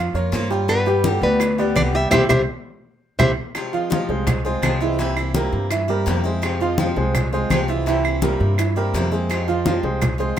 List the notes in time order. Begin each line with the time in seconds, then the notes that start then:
Already playing: F2 F3 F4 F5
0.14 F2 A#3 C#4 F4 A#4 C#5, high conga
0.32 G2 F3 A#3 C#4 F4, high bongo, low bongo, high conga
0.50 G3 A#3 C#4 F4 G4 G5, high bongo, high conga
0.68 B2 D3 G3 B3 G4 B4 D5, high bongo, high conga, claves
0.86 G3 B3 G4 G5, high conga
1.04 B2 D3 G3 B3 G4, high bongo, high conga
1.22 D2 B3 B4 D5, high bongo, high conga
1.40 muted steel-string acoustic guitar stroke, high bongo, high conga, claves
1.58 G3 B3 G4 B4 D5, high bongo, high conga
1.75 C2 B2 D3 G3 B3 G4 D5, high bongo, low bongo, high conga, claves
1.94 G3 B3 G4 E5 G5, high bongo, high conga
2.11 C2 E3 G3 C4 E4 G4 C5 E5, low bongo, low conga, claves
2.29 C2 E3 G3 C4 E4 G4 C5 E5, low bongo, low conga, claves
3.19 C2 E3 G3 C4 E4 G4 C5 E5, low bongo, low conga, claves
3.55 C3 F3 G#3 C4 F4, high bongo, high conga, claves
3.73 F3 G#3 C4 F4 F5, high conga
3.90 C3 F3 G#3 C4 F4 F5, high bongo, high conga
4.09 C2 G#3 G#4 C5, high bongo, high conga
4.27 muted steel-string acoustic guitar stroke, high bongo, high conga, low conga, claves
4.45 G#3 C4 F4 G#4 C5, high bongo, high conga
4.62 C2 C3 F3 G#3 C4 F4, high bongo, low bongo, high conga, claves
4.81 E3 G#3 C4 E4 F4 E5, high bongo, high conga
4.99 C3 E3 A#3 C4 E4 E5, high bongo, high conga
5.17 A#3 C4 E4, high bongo, high conga, claves
5.34 C3 E3 G3 A#3 C4 E4 G4 A#4, high bongo, high conga
5.52 G2, high bongo, high conga
5.71 E3 E4 E5, muted steel-string acoustic guitar stroke, high bongo, high conga, claves
5.88 G3 A#3 C4 E4 G4 A#4, high conga
6.06 F2 C3 E3 A#3 C4 E4, high bongo, low bongo, high conga
6.24 G#3 A#3 C4 E4 G#4 C5, high bongo, high conga
6.42 C3 F3 G#3 C4 F4, high bongo, high conga, claves
6.60 F3 G#3 C4 F4 F5, high conga
6.78 C3 F3 G#3 C4 F4 F5, high bongo, high conga
6.96 C2 G#3 G#4 C5, high bongo, high conga
7.15 muted steel-string acoustic guitar stroke, high bongo, high conga, low conga, claves
7.33 G#3 C4 F4 G#4 C5, high bongo, high conga
7.50 C2 C3 F3 G#3 C4 F4, high bongo, low bongo, high conga, claves
7.68 E3 G#3 C4 E4 F4 E5, high bongo, high conga
7.86 C3 E3 A#3 C4 E4 E5, high bongo, high conga
8.05 A#3 C4 E4, high bongo, high conga, claves
8.22 C3 E3 G3 A#3 C4 E4 G4 A#4, high bongo, high conga
8.40 G2, high bongo, high conga
8.58 E3 E4 E5, muted steel-string acoustic guitar stroke, high bongo, high conga, claves
8.76 G3 A#3 C4 E4 G4 A#4, high conga
8.94 F2 C3 E3 A#3 C4 E4, high bongo, low bongo, high conga
9.11 G#3 A#3 C4 E4 G#4 C5, high bongo, high conga
9.29 C3 F3 G#3 C4 F4, high bongo, high conga, claves
9.48 F3 G#3 C4 F4 F5, high conga
9.66 C3 F3 G#3 C4 F4 F5, high bongo, high conga
9.83 C2 G#3 G#4 C5, high bongo, high conga
10.01 muted steel-string acoustic guitar stroke, high bongo, high conga, low conga, claves
10.18 G#3 C4 F4 G#4 C5, high bongo, high conga